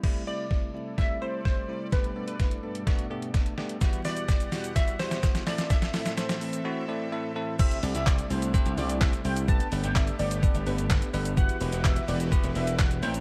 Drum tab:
CC |x---------------|----------------|----------------|----------------|
HH |----------------|xx-xxx-xxx-xxx-x|xxoxxxoxxxoxxxox|xxoxxxox--------|
SH |----------------|----------------|xxxxxxxxxxxxxxxx|xxxxxxxx--------|
CP |----------------|----------------|----------------|----------------|
SD |o---o---o---o---|o---o---o---o-o-|o-o-o-o-o-oooooo|oooooo----------|
BD |o---o---o---o---|o---o---o---o---|o---o---o---o---|o---------------|

CC |x---------------|----------------|----------------|
HH |-xox-xox-xox-xox|-xox-xox-xox-xox|-xox-xox-xox-xox|
SH |xxxxxxxxxxxxxxxx|xxxxxxxxxxxxxxxx|xxxxxxxxxxxxxxxx|
CP |----x-------x---|----x-------x---|----x-------x---|
SD |----o-------o---|----o-------o---|----o-------o---|
BD |o---o---o---o---|o---o---o---o---|o---o---o---o---|